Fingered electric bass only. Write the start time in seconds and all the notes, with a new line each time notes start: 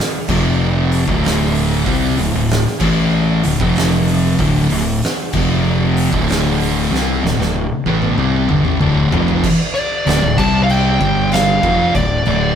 0.29 F1
1.08 D1
1.86 C2
2.18 D1
2.34 D1
2.81 A1
3.45 D1
3.60 F1
4.39 D1
4.71 D1
5.34 F1
6.13 D1
6.91 C2
7.23 D1
7.39 D1
7.86 A1
8.18 C2
8.49 G1
8.65 A1
8.82 D1
9.12 F1
10.06 D1
10.23 D1
10.38 C2
11.01 G1
11.63 F1
11.95 D1
12.26 D1